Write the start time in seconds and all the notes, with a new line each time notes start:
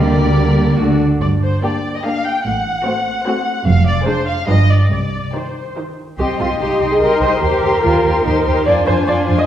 Already playing: D2 D3 G3 A#3 G4 A#4 D5
0.80 D2 D3 A3 D4 F#4 A4
1.21 G1 G2 D5
1.43 C5
1.63 A#3 D4 G4 D5
1.95 D#5
2.04 A#3 D4 G4 F5
2.25 G5
2.45 A1 A2 F#5
2.85 A3 C4 F#4 C5
3.26 A3 C4 F#4 C5
3.66 F1 F2 F5
3.87 D5
4.06 G#3 D4 G#4 C5
4.28 F5
4.48 G1 G2 F3 D4 G4 B4 D#5
4.70 D5
4.91 C2 C3 D5
5.34 D#3 D#4 G4 C5
5.76 D#3 D#4 G4 C5
6.19 C2 C4 G4 D#5 C6
6.39 C2 F4 G4 D#5 C6
6.60 C2 D#4 G4 D#5 C6
6.80 C2 G4 D#5 C6
6.91 G#4
7.00 C2 G4 A#4 D#5 C6
7.21 C2 G4 C5 D#5 C6
7.42 D#2 G4 A#4 C5 C6
7.62 D#2 G4 C5 C6
7.83 D#2 F4 G4 C5 C6
8.05 D#2 G4 C5 C6
8.25 D#2 D#4 G4 C5 C6
8.45 D#2 G4 C5 C6
8.65 F2 D4 F4 C5 D5 G#5
8.85 F2 F4 C5 G#5
9.07 F2 F4 C5 D5 G#5
9.27 F2 F4 C5 G#5
9.38 D#5